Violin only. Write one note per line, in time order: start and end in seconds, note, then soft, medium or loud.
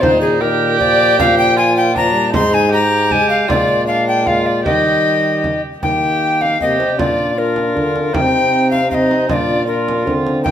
0.03 0.42 D#4 medium
0.41 1.59 G4 medium
1.57 1.97 F4 medium
1.95 2.33 D4 medium
2.33 2.71 D#4 medium
2.72 3.50 G4 medium
3.49 3.87 F4 medium
3.88 4.28 D4 medium
4.26 4.64 F4 medium
4.65 5.61 G4 medium
5.83 6.57 G4 soft
6.61 7.00 G4 medium
6.99 7.37 F4 medium
7.37 8.15 F4 medium
8.14 8.89 D#4 medium
8.90 9.31 D#4 medium
9.29 9.67 F4 medium
9.68 10.43 F4 medium
10.45 10.51 D#4 medium